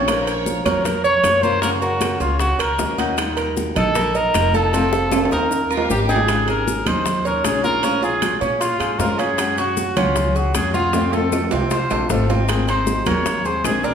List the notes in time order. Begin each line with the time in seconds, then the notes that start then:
Already playing: A#1 C#4
0.07 F3 A#3 C#4 F4 A#4, high bongo, high conga, high timbale, claves, maracas
0.27 A#4 C#5, high conga, high timbale, maracas
0.46 high bongo, high conga, maracas
0.66 F2 A#4 C#5, high conga, low conga, high timbale, claves, maracas
0.85 A#4, muted nylon-string guitar stroke, high bongo, high conga, low conga, high timbale, maracas
1.04 C#5, high conga, maracas
1.23 F#2 F3 A#3 C#4 F4, high bongo, low bongo, high conga, high timbale, claves, maracas
1.42 A#3 C#4 F4 A#4 C5, high conga, maracas
1.62 C#3 F#3 A#3 C#4 F#4 A#4, high bongo, high conga, high timbale, maracas
1.81 F#4 A#4, high bongo, high conga, maracas
2.01 high bongo, high conga, high timbale, claves, maracas
2.20 C#2 C#4 F4, high bongo, high conga, maracas
2.39 F#4, muted nylon-string guitar stroke, high bongo, high conga, high timbale, maracas
2.58 C#2 A#4, high bongo, high conga, high timbale, claves, maracas
2.78 D#2 F#3 A#3 C#4 F#4, high bongo, low bongo, high conga, low timbale, maracas
2.98 F#3 A#3 C#4 D#4 F#4, high conga, high timbale, maracas
3.18 D#3 G3 D#4 F4, high bongo, high conga, high timbale, claves, maracas
3.37 A#4, high conga, high timbale, maracas
3.57 high bongo, high conga, maracas
3.75 A#1 A4 D#5, high conga, low conga, high timbale, claves, maracas
3.95 A#4, muted nylon-string guitar stroke, high bongo, high conga, low conga, high timbale, maracas
4.15 A#4 D#5, high conga, maracas
4.34 F1 D#3 G3 D#4 F4, high bongo, low bongo, high conga, high timbale, claves, maracas
4.54 G3 D#4 F4 A4, high conga, maracas
4.73 C3 F3 A3 C4 F4, high bongo, high conga, high timbale, maracas
4.93 A4, high bongo, high conga, maracas
5.11 high bongo, high conga, high timbale, claves, maracas
5.25 high timbale
5.31 D#2 D#4 A#4, high bongo, high conga, maracas
5.38 high timbale
5.51 muted nylon-string guitar stroke, low bongo, high conga, maracas
5.70 F4 A#4, high conga, claves, maracas
5.77 low timbale
5.89 G#1 D#3 G3 C#4 G4, low bongo, high conga, maracas
6.09 G3 C#4 D#4 G4 G#4, low bongo, maracas
6.16 low timbale
6.28 C#3 G#3 C#4 D#4 G#4, high bongo, high conga, high timbale, claves, maracas
6.48 G#3 C#4 D#4 G#4 A#4, high conga, high timbale, maracas
6.67 high bongo, high conga, maracas
6.86 D#2 C#4 D#4 G#4 C5, high conga, low conga, high timbale, claves, maracas
7.06 muted nylon-string guitar stroke, high bongo, high conga, low conga, high timbale, maracas
7.25 C#4 D#4 G#4 A#4 C#5, high conga, maracas
7.44 A#1 C#3 G#3 C#4 D#4 G#4, high bongo, low bongo, high conga, high timbale, claves, maracas
7.64 C#4 D#4 F4 G#4 A#4, high conga, maracas
7.83 F3 G#3 C#4 F4, high bongo, high conga, high timbale, maracas
8.02 G#3 C#4 F4 G#4, high bongo, high conga, maracas
8.22 high bongo, high conga, high timbale, claves, maracas
8.41 A#2 G#3 C#4 F4, high bongo, high conga, maracas
8.60 F4, muted nylon-string guitar stroke, high bongo, high conga, high timbale, maracas
8.80 G#2 G#3 C#4 F4 G#4, high bongo, high conga, high timbale, claves, maracas
8.99 F#2 F3 G#3 C#4 F4 A#4, high bongo, low bongo, high conga, low timbale, maracas
9.19 G#3 C#4 F4 G#4, high timbale, maracas
9.38 F#3 G#3 C#4 F#4, high bongo, high conga, high timbale, claves, maracas
9.58 G#3 C#4 F#4, high conga, high timbale, maracas
9.77 high bongo, high conga, maracas
9.96 C#2 G#3 C#4 F4 F#4, high conga, low conga, high timbale, claves, maracas
10.16 muted nylon-string guitar stroke, high bongo, high conga, low conga, high timbale, maracas
10.35 G#3 C#4 F#4 G#4, high conga, maracas
10.54 F2 F#3 G#3 C#4 F#4 G#4, high bongo, low bongo, high conga, high timbale, claves, maracas
10.74 G#3 C#4 F4 F#4, high conga, maracas
10.93 C3 F3 A3 C4 F4, high bongo, high conga, high timbale, maracas
11.12 F3 A3 C4 F4 A4, high bongo, high conga, high timbale, maracas
11.32 high bongo, high conga, low timbale, claves, maracas
11.51 C2 A3 C4 F4, high bongo, high conga, low timbale, maracas
11.71 F4 C5, muted nylon-string guitar stroke, high bongo, high conga, low timbale, maracas
11.90 A#1 A3 C4 F4 A4, high bongo, high conga, low timbale, claves, maracas
12.10 G#1 C3 F3 A3 C4 F4 A4, high bongo, low bongo, high conga, low timbale, maracas
12.29 A3 C4 F4, high conga, low timbale, maracas
12.48 D#3 G#3 C4 G#4, high bongo, high conga, high timbale, claves, maracas
12.67 G#3 C4 D#4 G#4 C5, high conga, high timbale, maracas
12.87 high bongo, high conga, maracas
13.06 D#2 G#3 A#3 C4 G#4 C#5, high conga, low conga, high timbale, claves, maracas
13.26 muted nylon-string guitar stroke, high bongo, high conga, low conga, high timbale, maracas
13.45 G#3 C4 G#4 C5, high conga, maracas
13.64 A#1 D#3 G#3 C4 G#4, high bongo, low bongo, high conga, high timbale, low timbale, claves, maracas
13.83 G#3 C4 D4 G#4 A#4, high conga, maracas